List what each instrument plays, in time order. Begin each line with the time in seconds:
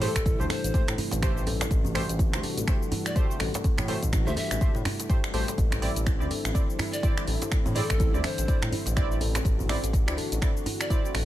Already playing: analog synth pad C3 E3 G3 A3 E4
0.01 kalimba E3, synth keys A3 G4 C5, pan flute A4, open hi-hat, djembe tone
0.16 analog synth bass A1, finger snap, kick, closed hi-hat, cabasa
0.26 kalimba E4, kick, closed hi-hat, djembe tone, cabasa
0.40 analog synth bass D2, synth keys A3 G4 C5, kalimba D4, cabasa
0.50 kalimba A4, pan flute C5, finger snap, open hi-hat, djembe tone
0.64 analog synth bass A1, closed hi-hat, cabasa
0.74 synth keys A3 G4 C5, kick, closed hi-hat, djembe tone, cabasa
0.88 analog synth bass A2, finger snap, djembe slap, cabasa
0.98 kalimba E4, open hi-hat, djembe tone, djembe bass
1.11 analog synth bass A1, closed hi-hat, djembe slap, cabasa
1.22 synth keys A3 G4 C5, finger snap, kick, closed hi-hat, djembe tone, cabasa
1.36 analog synth bass A1, synth keys A3 G4 C5, cabasa
1.47 kalimba A4, open hi-hat, djembe tone
1.61 finger snap, closed hi-hat, djembe slap, cabasa
1.70 analog synth bass A1, kalimba A3, analog synth pad F#4, kick, closed hi-hat, djembe tone, cabasa
1.84 kalimba E3, djembe bass, cabasa
1.95 kalimba E3, synth keys A3 G4 C5, finger snap, open hi-hat, djembe tone
2.09 analog synth bass A1, closed hi-hat, cabasa
2.19 kalimba E4, kick, closed hi-hat, djembe tone, cabasa
2.33 analog synth bass D2, synth keys A3 G4 C5, kalimba D4, finger snap, cabasa
2.43 kalimba A4, open hi-hat, djembe tone
2.57 analog synth bass A1, closed hi-hat, cabasa
2.67 synth keys A3 G4 C5, finger snap, kick, closed hi-hat, djembe tone, cabasa
2.82 cabasa
2.91 kalimba E4, open hi-hat, djembe tone, djembe bass
3.06 pan flute D5, finger snap, closed hi-hat, cabasa
3.16 synth keys A3 G4 C5, kick, closed hi-hat, djembe tone, cabasa
3.30 synth keys A3 G4 C5, cabasa
3.40 analog synth bass A1, kalimba A4, finger snap, open hi-hat, djembe tone
3.54 closed hi-hat, djembe slap, cabasa
3.64 kalimba A3, kick, closed hi-hat, djembe tone, cabasa
3.78 analog synth bass A2, kalimba E3, finger snap, djembe slap, djembe bass, cabasa
3.88 kalimba E3, synth keys A3 G4 C5, open hi-hat, djembe tone
4.03 analog synth bass A1, kick, closed hi-hat, cabasa
4.12 kalimba E4, finger snap, kick, closed hi-hat, djembe tone, cabasa
4.27 analog synth bass D2, synth keys A3 G4 C5, kalimba D4, pan flute E5, cabasa
4.36 kalimba A4, pan flute E5, open hi-hat, djembe tone
4.51 analog synth bass A1, finger snap, closed hi-hat, cabasa
4.61 synth keys A3 G4 C5, kick, closed hi-hat, djembe tone, cabasa
4.75 analog synth bass A2, djembe slap, cabasa
4.85 kalimba E4, finger snap, open hi-hat, djembe tone, djembe bass
5.00 closed hi-hat, djembe slap, cabasa
5.09 synth keys A3 G4 C5, kick, closed hi-hat, djembe tone, cabasa
5.24 finger snap, cabasa
5.34 analog synth bass A1, synth keys A3 G4 C5, kalimba A4, open hi-hat, djembe tone
5.48 closed hi-hat, djembe slap, cabasa
5.58 analog synth bass A1, analog synth pad D3 C4 E4, kalimba A3, kick, closed hi-hat, djembe tone, cabasa
5.72 kalimba E3, finger snap, djembe bass, cabasa
5.82 kalimba E3, synth keys C4 E4 D5, open hi-hat, djembe tone
5.96 analog synth bass A1, closed hi-hat, cabasa
6.06 kalimba E4, finger snap, kick, closed hi-hat, djembe tone, cabasa
6.20 analog synth bass D2, synth keys C4 E4 D5, kalimba D4, cabasa
6.31 kalimba A4, open hi-hat, djembe tone
6.45 analog synth bass A1, finger snap, closed hi-hat, cabasa
6.55 synth keys C4 E4 D5, kick, closed hi-hat, djembe tone, cabasa
6.70 cabasa
6.79 kalimba E4, finger snap, open hi-hat, djembe tone, djembe bass
6.93 pan flute D5, closed hi-hat, cabasa
7.03 synth keys C4 E4 D5, kick, closed hi-hat, djembe tone, cabasa
7.17 synth keys C4 E4 D5, finger snap, cabasa
7.27 analog synth bass A1, kalimba A4, open hi-hat, djembe tone
7.42 closed hi-hat, djembe slap, cabasa
7.52 kalimba A3, finger snap, kick, closed hi-hat, djembe tone, cabasa
7.66 analog synth bass A2, kalimba E3, djembe slap, djembe bass, cabasa
7.75 kalimba E3, synth keys C4 E4 D5, pan flute A4, open hi-hat, djembe tone
7.90 analog synth bass A1, finger snap, kick, closed hi-hat, cabasa
8.00 kalimba E4, kick, closed hi-hat, djembe tone, cabasa
8.14 analog synth bass D2, synth keys C4 E4 D5, kalimba D4, cabasa
8.24 kalimba A4, pan flute C5, finger snap, open hi-hat, djembe tone
8.38 analog synth bass A1, closed hi-hat, cabasa
8.48 synth keys C4 E4 D5, kick, closed hi-hat, djembe tone, cabasa
8.62 analog synth bass A2, finger snap, djembe slap, cabasa
8.72 kalimba E4, open hi-hat, djembe tone, djembe bass
8.86 analog synth bass A1, closed hi-hat, djembe slap, cabasa
8.96 synth keys C4 E4 D5, finger snap, kick, closed hi-hat, djembe tone, cabasa
9.11 analog synth bass A1, synth keys C4 E4 D5, cabasa
9.20 kalimba A4, open hi-hat, djembe tone
9.35 finger snap, closed hi-hat, djembe slap, cabasa
9.45 analog synth bass A1, kalimba A3, analog synth pad F#4, kick, closed hi-hat, djembe tone, cabasa
9.59 kalimba E3, djembe bass, cabasa
9.69 kalimba E3, synth keys C4 E4 D5, finger snap, open hi-hat, djembe tone
9.83 analog synth bass A1, closed hi-hat, cabasa
9.93 kalimba E4, kick, closed hi-hat, djembe tone, cabasa
10.08 analog synth bass D2, synth keys C4 E4 D5, kalimba D4, finger snap, cabasa
10.17 kalimba A4, open hi-hat, djembe tone
10.32 analog synth bass A1, closed hi-hat, cabasa
10.42 synth keys C4 E4 D5, finger snap, kick, closed hi-hat, djembe tone, cabasa
10.57 cabasa
10.66 kalimba E4, open hi-hat, djembe tone, djembe bass
10.80 pan flute D5, finger snap, closed hi-hat, cabasa
10.90 synth keys C4 E4 D5, kick, closed hi-hat, djembe tone, cabasa
11.04 synth keys C4 E4 D5, cabasa
11.14 analog synth bass A1, kalimba A4, finger snap, open hi-hat, djembe tone